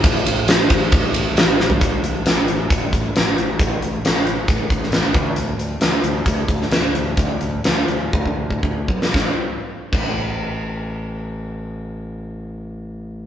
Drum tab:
CC |----------------|----------------|----------------|----------------|
RD |x-x-x-x-x-x-x---|----------------|----------------|----------------|
HH |----------------|x-x-x-x-x-x-x-x-|x-x-x-x-x-x-x-x-|x-x-x-x-x-x-x-x-|
SD |----o-------o-o-|----o-------o---|----o------oo---|----o------oo---|
FT |---------------o|----------------|----------------|----------------|
BD |o-----o-o-------|o-------o-o-----|o-------o-o---o-|--------o-o-----|

CC |----------------|------x---------|----------------|
RD |----------------|----------------|----------------|
HH |x-x-x-x---------|----------------|----------------|
SD |----o----------o|o---------------|----------------|
FT |----------------|----------------|----------------|
BD |o-------oo-oo-o-|o-----o---------|----------------|